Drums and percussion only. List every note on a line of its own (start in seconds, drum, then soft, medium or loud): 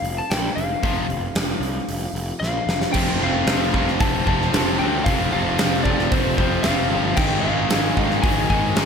0.05 open hi-hat soft
0.31 snare loud
0.31 open hi-hat medium
0.58 open hi-hat medium
0.83 kick loud
0.83 open hi-hat medium
1.10 open hi-hat medium
1.35 snare loud
1.35 open hi-hat medium
1.63 open hi-hat medium
1.89 open hi-hat medium
2.16 open hi-hat medium
2.43 snare medium
2.69 snare medium
2.81 snare medium
2.94 kick loud
2.94 crash loud
3.47 snare loud
3.47 open hi-hat medium
3.74 kick medium
3.88 snare soft
4.00 kick loud
4.00 open hi-hat medium
4.27 kick medium
4.42 snare soft
4.54 snare loud
4.54 open hi-hat medium
5.06 kick loud
5.06 open hi-hat medium
5.59 snare loud
5.59 open hi-hat medium
5.85 kick medium
5.99 snare soft
6.12 kick loud
6.12 open hi-hat medium
6.38 kick medium
6.63 snare loud
6.63 open hi-hat medium
7.17 kick loud
7.17 crash loud
7.70 snare loud
7.70 open hi-hat medium
7.97 kick medium
8.11 snare soft
8.23 kick loud
8.23 open hi-hat medium
8.50 kick medium
8.76 snare loud
8.76 open hi-hat medium